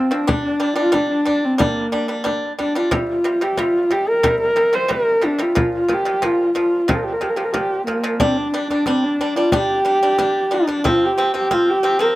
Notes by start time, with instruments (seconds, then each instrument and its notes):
Already playing: horsehead fiddle C4
0.11 pipa F3 C4, horsehead fiddle D4
0.27 pipa G3 D4, frame drum
0.45 horsehead fiddle D4
0.60 pipa G3 D4
0.76 pipa G3 D4, horsehead fiddle F4
0.92 pipa G3 D4, horsehead fiddle D4, frame drum
1.10 horsehead fiddle D4
1.25 pipa G3 D4, frame drum
1.44 horsehead fiddle C4
1.58 pipa G3 D4, horsehead fiddle A#3, frame drum
1.92 pipa G3 D4, frame drum
2.08 pipa G3 D4
2.24 pipa G3 D4, frame drum
2.59 pipa G3 D4, horsehead fiddle D4, frame drum
2.75 pipa G3 D4, horsehead fiddle F4
2.91 pipa C3 G3, frame drum
3.10 horsehead fiddle F4
3.24 pipa C3 G3
3.41 pipa C3 G3, horsehead fiddle G4
3.57 pipa C3 G3, horsehead fiddle F4, frame drum
3.91 pipa C3 G3, horsehead fiddle G4, frame drum
4.09 horsehead fiddle A#4
4.23 pipa C3 G3, frame drum
4.41 horsehead fiddle A#4
4.56 pipa C3 G3, frame drum
4.73 pipa C3 G3, horsehead fiddle C5
4.88 pipa C3 G3, horsehead fiddle A#4, frame drum
5.21 pipa C3 G3, horsehead fiddle D4, frame drum
5.38 pipa C3 G3, horsehead fiddle F4
5.55 pipa A#2 F3, frame drum
5.76 horsehead fiddle F4
5.88 pipa A#2 F3, frame drum
5.93 horsehead fiddle G4
6.05 pipa A#2 F3
6.22 pipa A#2 F3, horsehead fiddle F4, frame drum
6.55 pipa A#2 F3, horsehead fiddle F4, frame drum
6.88 pipa A#2 F3, horsehead fiddle G4, frame drum
6.96 horsehead fiddle A#4
7.04 horsehead fiddle G4
7.12 horsehead fiddle A#4
7.21 pipa A#2 F3, horsehead fiddle G4, frame drum
7.29 horsehead fiddle A#4
7.36 pipa A#2 F3, horsehead fiddle G4
7.44 horsehead fiddle A#4
7.52 pipa A#2 F3, horsehead fiddle G4, frame drum
7.87 pipa A#2 F3, horsehead fiddle A#3, frame drum
8.04 pipa A#2 F3
8.20 pipa G3 D4, horsehead fiddle C4, frame drum
8.37 horsehead fiddle D4
8.54 pipa G3 D4
8.70 pipa G3 D4, horsehead fiddle D4, frame drum
8.86 pipa G3 D4, horsehead fiddle C4, frame drum
9.03 horsehead fiddle D4
9.19 pipa G3 D4, frame drum
9.36 pipa G3 D4, horsehead fiddle F4
9.52 pipa G3 D4, horsehead fiddle G4, frame drum
9.85 pipa G3 D4
10.03 pipa G3 D4
10.18 pipa G3 D4, frame drum
10.51 pipa G3 D4, horsehead fiddle D4
10.67 pipa G3 D4, frame drum
10.84 pipa F3 C4, frame drum
10.88 horsehead fiddle F4
11.06 horsehead fiddle G4
11.18 pipa F3 C4
11.34 pipa F3 C4, horsehead fiddle G4, frame drum
11.51 pipa F3 C4, horsehead fiddle F4, frame drum
11.70 horsehead fiddle G4
11.83 pipa F3 C4, frame drum
11.99 pipa F3 C4, horsehead fiddle A#4